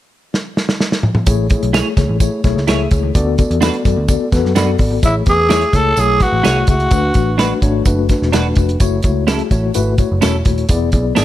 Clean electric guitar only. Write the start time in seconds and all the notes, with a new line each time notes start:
1.73 E4 G#4 C#5
2.67 E4 G#4 C#5
3.61 D4 F#4 B4
4.55 D4 F#4 B4
5.49 E4 G#4 C#5
6.43 E4 G#4 C#5
7.38 D4 F#4 B4
8.32 D4 F#4 B4
9.27 C#4 E4 A4
10.21 C#4 E4 A4
11.15 B3 D4 G#4